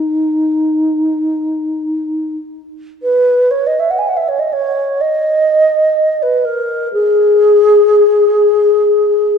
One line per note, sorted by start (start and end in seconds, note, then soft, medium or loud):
0.00 2.35 D#4 soft
3.02 3.52 B4 medium
3.50 3.68 C#5 medium
3.66 3.81 D#5 medium
3.79 3.92 E5 medium
3.90 3.99 F#5 medium
3.98 4.09 G#5 medium
4.07 4.18 F#5 medium
4.16 4.29 E5 medium
4.28 4.40 C#5 medium
4.39 4.54 D#5 medium
4.52 5.02 C#5 medium
5.01 6.24 D#5 medium
6.22 6.46 B4 medium
6.45 6.91 A#4 medium
6.93 9.38 G#4 medium